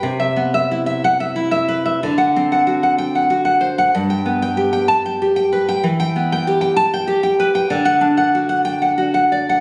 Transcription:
\new Staff \with { instrumentName = "Nylon-string guitar" } { \time 3/4 \key g \major \tempo 4 = 94 << { r4. fis''16 r4 r16 | r4. g''16 r4 r16 | r4. a''16 r4 r16 | \key e \minor r4. a''16 r4 r16 |
r4. g''16 r4 r16 | } \\ { c16 e''16 b16 e''16 e'16 e''8 e''16 e'16 e''16 b'16 e''16 | d16 fis''16 c'16 fis''16 fis'16 fis''8 fis''16 fis'16 fis''16 c''16 fis''16 | g,16 g''16 b16 g''16 g'16 g''8 g''16 g'16 g''16 b'16 g''16 | e16 g''16 b16 g''16 g'16 g''8 g''16 g'16 g''16 b'16 g''16 |
d16 fis''16 d'16 fis''16 fis'16 fis''8 fis''16 fis'16 fis''16 d''16 fis''16 | } >> }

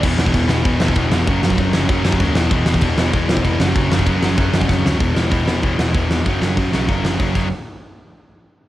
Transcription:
<<
  \new Staff \with { instrumentName = "Distorted electric guitar" } { \clef bass \time 4/4 \key e \mixolydian \tempo 4 = 193 <e, b, e>8 <e, b, e>8 <e, b, e>8 <e, b, e>8 <e, b, e>8 <e, b, e>8 <e, b, e>8 <e, b, e>8 | <fis, cis fis>8 <fis, cis fis>8 <fis, cis fis>8 <fis, cis fis>8 <fis, cis fis>8 <fis, cis fis>8 <fis, cis fis>8 <e, b, e>8 | <e, b, e>8 <e, b, e>8 <e, b, e>8 <e, b, e>8 <e, b, e>8 <e, b, e>8 <e, b, e>8 <fis, cis fis>8 | <fis, cis fis>8 <fis, cis fis>8 <fis, cis fis>8 <fis, cis fis>8 <fis, cis fis>8 <fis, cis fis>8 <fis, cis fis>8 <fis, cis fis>8 |
<e, b, e>8 <e, b, e>8 <e, b, e>8 <e, b, e>8 <e, b, e>8 <e, b, e>8 <e, b, e>8 <e, b, e>8 | <fis, cis fis>8 <fis, cis fis>8 <fis, cis fis>8 <fis, cis fis>8 <fis, cis fis>8 <fis, cis fis>8 <fis, cis fis>8 <fis, cis fis>8 | r1 | }
  \new Staff \with { instrumentName = "Overdriven electric guitar" } { \clef bass \time 4/4 \key e \mixolydian <e, b, e>8 <e, b, e>8 <e, b, e>8 <e, b, e>8 <e, b, e>8 <e, b, e>8 <e, b, e>8 <e, b, e>8 | <fis, cis fis>8 <fis, cis fis>8 <fis, cis fis>8 <fis, cis fis>8 <fis, cis fis>8 <fis, cis fis>8 <fis, cis fis>8 <e, b, e>8 | <e, b, e>8 <e, b, e>8 <e, b, e>8 <e, b, e>8 <e, b, e>8 <e, b, e>8 <e, b, e>8 <fis, cis fis>8 | <fis, cis fis>8 <fis, cis fis>8 <fis, cis fis>8 <fis, cis fis>8 <fis, cis fis>8 <fis, cis fis>8 <fis, cis fis>8 <fis, cis fis>8 |
<e, b, e>8 <e, b, e>8 <e, b, e>8 <e, b, e>8 <e, b, e>8 <e, b, e>8 <e, b, e>8 <e, b, e>8 | <fis, cis fis>8 <fis, cis fis>8 <fis, cis fis>8 <fis, cis fis>8 <fis, cis fis>8 <fis, cis fis>8 <fis, cis fis>8 <fis, cis fis>8 | r1 | }
  \new Staff \with { instrumentName = "Picked electric bass" } { \clef bass \time 4/4 \key e \mixolydian e,,8 e,,8 e,,8 e,,8 e,,8 e,,8 e,,8 eis,,8 | fis,,8 fis,,8 fis,,8 fis,,8 fis,,8 fis,,8 dis,8 e,,8 | e,,8 e,,8 e,,8 e,,8 e,,8 e,,8 eis,,8 fis,,8 | fis,,8 fis,,8 fis,,8 fis,,8 fis,,8 fis,,8 fis,,8 d,8 |
e,,8 e,,8 e,,8 e,,8 e,,8 e,,8 e,4 | fis,,8 fis,,8 fis,8 b,,8 fis,,8 fis,,8 fis,,8 fis,,8 | r1 | }
  \new DrumStaff \with { instrumentName = "Drums" } \drummode { \time 4/4 <cymc bd>8 sn16 bd16 <cymc bd>8 sn8 <cymc bd>8 sn16 bd16 <cymc bd>8 sn8 | <cymc bd>8 sn16 bd16 <cymc bd>8 sn8 <cymc bd>8 sn16 bd16 <cymc bd>8 sn8 | <cymc bd>8 sn16 bd16 <cymc bd>8 sn8 <cymc bd>8 sn16 bd16 <cymc bd>8 sn8 | <cymc bd>8 sn16 bd16 <cymc bd>8 sn8 <cymc bd>8 sn16 bd16 <bd sn>8 sn8 |
<hho bd>8 sn8 <hho bd>8 sn8 <hho bd>8 sn8 <hho bd>8 sn8 | <hho bd>8 sn8 <hho bd>8 sn8 <hho bd>8 sn8 <hho bd>8 <cymc bd>8 | r4 r4 r4 r4 | }
>>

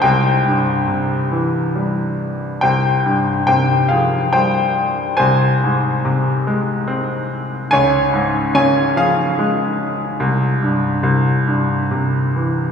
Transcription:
<<
  \new Staff \with { instrumentName = "Grand piano" } { \time 3/4 \key c \phrygian \tempo 4 = 70 <c'' g''>4 r2 | <c'' g''>4 <c'' g''>8 <aes' f''>8 <c'' g''>4 | <c'' aes''>2~ <c'' aes''>8 r8 | <des'' aes''>4 <des'' aes''>8 <aes' f''>4.~ |
<aes' f''>2~ <aes' f''>8 r8 | }
  \new Staff \with { instrumentName = "Grand piano" } { \clef bass \time 3/4 \key c \phrygian c,8 g,8 c8 e8 g4 | c,8 g,8 c8 f8 g4 | c,8 aes,8 c8 aes8 c'4 | des,8 aes,8 des8 f8 aes4 |
c,8 g,8 c,8 g,8 c8 e8 | }
>>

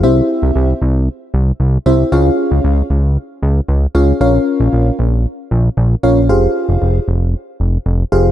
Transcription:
<<
  \new Staff \with { instrumentName = "FM electric piano" } { \time 4/4 \key f \minor \tempo 4 = 115 <c' e' g' c'' e''>4~ <c' e' g' c'' e''>16 r2 r16 <c' e' g' c'' e''>8 | <des' f' aes' des'' f''>4~ <des' f' aes' des'' f''>16 r2 r16 <des' f' aes' des'' f''>8 | <des' f' bes' des'' f''>4~ <des' f' bes' des'' f''>16 r2 r16 <des' f' bes' des'' f''>8 | <f' g' aes' c'' f''>4~ <f' g' aes' c'' f''>16 r2 r16 <f' g' aes' c'' f''>8 | }
  \new Staff \with { instrumentName = "Analog synth bass" } { \clef bass \time 4/4 \key f \minor c,8 r16 c,16 c,8 c,8. r16 c,8 c,8 c,8 | des,8 r16 des,16 des,8 des,8. r16 des,8 des,8 des,8 | bes,,8 r16 bes,,16 bes,,8 bes,,8. r16 bes,,8 bes,,8 bes,,8 | f,,8 r16 f,,16 f,,8 f,,8. r16 f,,8 f,,8 f,,8 | }
>>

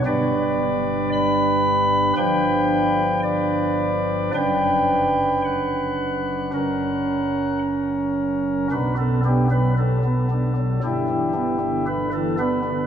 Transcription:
<<
  \new Staff \with { instrumentName = "Pipe organ" } { \time 4/4 \key b \minor \tempo 4 = 56 d''4 b''4 g''4 d''4 | g''4 fis''2 r4 | <d' fis' b'>16 a'16 g'16 b'16 a'4 <d' e' g'>4 b'16 a'16 b'8 | }
  \new Staff \with { instrumentName = "Pipe organ" } { \clef bass \time 4/4 \key b \minor << { <g, g d' b'>2 <g, f d' b'>2 | <fis, fis d' b'>2 <fis, fis cis' ais'>2 | b,16 b16 <b d'>16 fis8 b16 <b d'>16 fis16 g,16 e16 <b d'>16 d8 e16 <b d'>16 d16 | } \\ { g,,2 g,,2 | fis,,2 fis,,2 | b,,2 g,,2 | } >> }
>>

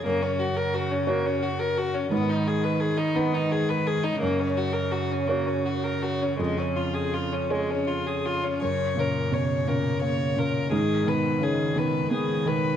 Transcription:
<<
  \new Staff \with { instrumentName = "Violin" } { \time 6/8 \key fis \major \tempo 4. = 57 ais16 cis'16 fis'16 ais'16 fis'16 cis'16 ais16 cis'16 fis'16 ais'16 fis'16 cis'16 | b16 dis'16 gis'16 b'16 gis'16 dis'16 b16 dis'16 gis'16 b'16 gis'16 dis'16 | ais16 cis'16 fis'16 ais'16 fis'16 cis'16 ais16 cis'16 fis'16 ais'16 fis'16 cis'16 | gis16 cis'16 eis'16 gis'16 eis'16 cis'16 gis16 cis'16 eis'16 gis'16 eis'16 cis'16 |
cis''8 ais'8 cis''8 ais'8 cis''8 ais'8 | gis'8 b'8 gis'8 b'8 gis'8 b'8 | }
  \new Staff \with { instrumentName = "Felt piano" } { \clef bass \time 6/8 \key fis \major fis,4. <fis' cis''>4. | gis,4. <dis' b'>4. | fis,4. <fis' cis''>4. | eis,4. <gis' cis''>4. |
fis,8 cis8 b,8 cis8 ais8 cis8 | gis,8 dis8 cis8 dis8 b8 dis8 | }
  \new Staff \with { instrumentName = "Cello" } { \clef bass \time 6/8 \key fis \major cis2. | dis2. | cis2.~ | cis2~ cis8 r8 |
cis8 ais,8 cis8 ais,8 cis8 ais,8 | dis8 b,8 dis8 b,8 dis8 b,8 | }
>>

